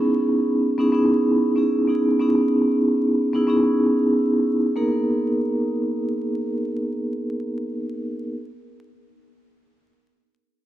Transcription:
0.00 0.69 B3 medium
0.00 0.69 C#4 medium
0.00 0.70 D#4 medium
0.00 0.70 E4 medium
0.00 0.70 G#4 loud
0.78 0.91 B3 loud
0.78 0.92 C#4 medium
0.78 0.92 D#4 medium
0.78 0.93 E4 medium
0.78 0.93 G#4 loud
0.92 1.52 B3 loud
0.92 1.53 C#4 medium
0.92 1.53 D#4 medium
0.92 1.53 E4 medium
0.92 1.53 G#4 loud
1.56 1.86 B3 medium
1.56 1.86 C#4 medium
1.56 1.87 D#4 medium
1.56 1.87 E4 medium
1.56 1.87 G#4 medium
1.88 2.18 B3 medium
1.88 2.18 C#4 medium
1.88 2.19 D#4 medium
1.88 2.19 E4 medium
1.88 2.19 G#4 medium
2.19 3.24 B3 medium
2.19 3.24 C#4 medium
2.19 3.25 D#4 medium
2.19 3.25 E4 medium
2.19 3.25 G#4 loud
3.33 3.46 B3 medium
3.33 3.47 C#4 medium
3.33 3.47 D#4 medium
3.33 3.48 E4 medium
3.33 3.49 G#4 loud
3.47 4.67 B3 loud
3.47 4.67 C#4 medium
3.47 4.68 D#4 medium
3.47 4.68 E4 medium
3.47 4.68 G#4 loud
4.76 8.33 A#3 medium
4.76 8.33 B3 medium
4.76 8.34 D#4 medium
4.76 8.34 G#4 medium
4.76 8.34 A#4 medium

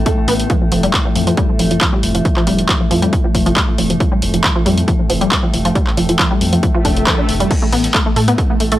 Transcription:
0.00 7.49 A2 medium
0.00 7.49 A3 medium
0.06 0.12 A3 medium
0.06 kick loud
0.06 closed hi-hat medium
0.28 0.43 A1 medium
0.28 0.37 B3 loud
0.28 open hi-hat loud
0.40 closed hi-hat medium
0.50 0.56 F3 medium
0.50 kick loud
0.50 closed hi-hat medium
0.61 0.67 F3 medium
0.72 0.87 F1 loud
0.72 0.75 F3 loud
0.72 open hi-hat loud
0.83 0.91 G3 loud
0.83 closed hi-hat medium
0.94 kick loud
0.94 clap loud
0.94 closed hi-hat medium
1.05 1.11 F3 medium
1.15 1.31 F2 medium
1.15 1.22 F3 medium
1.15 open hi-hat medium
1.27 1.30 F3 loud
1.27 closed hi-hat medium
1.37 1.46 G3 loud
1.37 kick loud
1.37 closed hi-hat medium
1.59 1.75 F1 medium
1.59 1.65 F3 medium
1.59 open hi-hat loud
1.71 1.76 F3 medium
1.71 closed hi-hat medium
1.81 1.85 F3 loud
1.81 kick loud
1.81 clap loud
1.81 closed hi-hat medium
1.93 2.01 G3 loud
2.03 2.19 F1 loud
2.03 open hi-hat medium
2.15 2.20 F3 medium
2.15 closed hi-hat medium
2.25 2.31 F3 medium
2.25 kick loud
2.25 closed hi-hat medium
2.37 2.40 F3 loud
2.37 clap soft
2.47 2.62 F1 loud
2.47 2.56 G3 loud
2.47 open hi-hat loud
2.58 closed hi-hat medium
2.69 2.75 F3 medium
2.69 kick loud
2.69 clap loud
2.69 closed hi-hat medium
2.80 2.86 F3 medium
2.91 3.06 F2 medium
2.91 2.94 F3 loud
2.91 open hi-hat medium
3.02 3.10 G3 loud
3.02 closed hi-hat medium
3.13 kick loud
3.13 closed hi-hat medium
3.24 3.30 F3 medium
3.34 3.50 F1 medium
3.34 3.41 F3 medium
3.34 kick medium
3.34 open hi-hat loud
3.46 3.49 F3 loud
3.46 closed hi-hat medium
3.56 3.65 G3 loud
3.56 kick loud
3.56 clap loud
3.56 closed hi-hat medium
3.78 3.94 F1 loud
3.78 3.84 F3 medium
3.78 open hi-hat medium
3.90 3.95 F3 medium
3.90 closed hi-hat medium
4.00 4.04 F3 loud
4.00 kick loud
4.00 closed hi-hat medium
4.12 4.20 G3 loud
4.22 4.38 F1 loud
4.22 open hi-hat loud
4.34 4.39 F3 medium
4.34 closed hi-hat medium
4.44 4.50 F3 medium
4.44 kick loud
4.44 clap loud
4.44 closed hi-hat medium
4.56 4.59 F3 loud
4.66 4.81 F2 medium
4.66 4.75 G3 loud
4.66 open hi-hat medium
4.78 closed hi-hat medium
4.88 4.94 F3 medium
4.88 kick loud
4.88 closed hi-hat medium
4.99 5.05 F3 medium
5.10 5.25 F1 medium
5.10 5.13 F3 loud
5.10 open hi-hat loud
5.21 5.29 G3 loud
5.21 closed hi-hat medium
5.32 kick loud
5.32 clap loud
5.32 closed hi-hat medium
5.43 5.48 F3 medium
5.53 5.69 F1 loud
5.53 5.59 F3 medium
5.53 open hi-hat medium
5.65 5.68 F3 loud
5.65 closed hi-hat medium
5.75 5.84 G3 loud
5.75 kick loud
5.75 closed hi-hat medium
5.87 clap soft
5.97 6.13 F1 loud
5.97 6.03 F3 medium
5.97 open hi-hat loud
6.09 6.14 F3 medium
6.09 closed hi-hat medium
6.19 6.23 F3 loud
6.19 kick loud
6.19 clap loud
6.19 closed hi-hat medium
6.31 6.39 G3 loud
6.41 6.57 F2 medium
6.41 open hi-hat medium
6.53 6.58 F3 medium
6.53 closed hi-hat medium
6.63 6.69 F3 medium
6.63 kick loud
6.63 closed hi-hat medium
6.63 swell medium
6.75 6.78 F3 loud
6.85 7.00 F1 loud
6.85 6.91 D4 medium
6.85 kick medium
6.85 open hi-hat loud
6.97 closed hi-hat medium
7.07 7.10 F3 loud
7.07 kick loud
7.07 clap loud
7.07 closed hi-hat medium
7.18 7.26 D4 medium
7.29 7.44 F1 medium
7.29 open hi-hat medium
7.40 7.46 G3 loud
7.40 closed hi-hat medium
7.51 8.79 A2 medium
7.51 7.57 A3 medium
7.51 8.79 A3 medium
7.51 kick loud
7.51 closed hi-hat medium
7.51 crash medium
7.62 7.65 A3 loud
7.72 7.88 A1 loud
7.72 7.82 B3 loud
7.72 open hi-hat loud
7.84 closed hi-hat medium
7.94 8.00 A3 medium
7.94 kick loud
7.94 clap loud
7.94 closed hi-hat medium
8.06 8.11 A3 medium
8.16 8.32 A2 medium
8.16 8.20 A3 loud
8.16 open hi-hat medium
8.28 8.36 B3 loud
8.28 closed hi-hat medium
8.38 kick loud
8.38 closed hi-hat medium
8.50 8.55 A3 medium
8.60 8.76 A1 medium
8.60 8.66 A3 medium
8.60 open hi-hat loud
8.72 8.75 A3 loud
8.72 closed hi-hat medium

